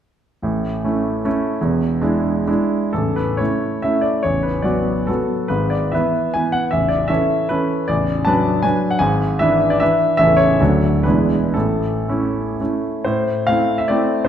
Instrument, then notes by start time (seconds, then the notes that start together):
grand piano
0.42 A1 A2
0.84 A3 C#4 E4
1.25 A3 C#4 E4
1.61 E1 E2
2.01 G#3 D4 E4
2.47 G#3 D4 E4
2.93 A0 A1 A4
3.16 B4
3.37 A3 C#4 E4 C#5
3.82 A3 C#4 E4 E5
4.01 D5
4.23 A0 A1 C#5
4.43 B4
4.62 F#3 B3 F#4 D5
5.07 F#3 B3 F#4 A4
5.48 G#1 G#2 B4
5.70 D5
5.92 E3 B3 B4 E5
6.34 E3 B3 B4 G#5
6.52 F#5
6.71 A0 A1 E5
6.88 D5
7.08 E3 C#4 A4 E5
7.49 E3 C#4 A4 B4
7.88 A0 A1 D5
8.25 F#3 D4 B4 A5
8.62 F#3 D4 B4 G#5
8.91 F#5
8.99 G#1 G#2 G#5
9.39 E3 D4 B4 E5
9.70 D5
9.80 E3 D4 B4 E5
10.17 A0 A1 E3 C#4 A4 E5
10.37 C#5
10.60 D1 D2 F#3 D4 A4
11.03 E1 E2 G#3 D4 E4 B4
11.54 A1 A2 A4
12.09 A3 C#4 E4
12.61 A3 C#4 E4
13.04 A2 C5
13.47 A3 C4 E4 F5
13.78 E5
13.88 A3 C4 E4 D5
14.25 C5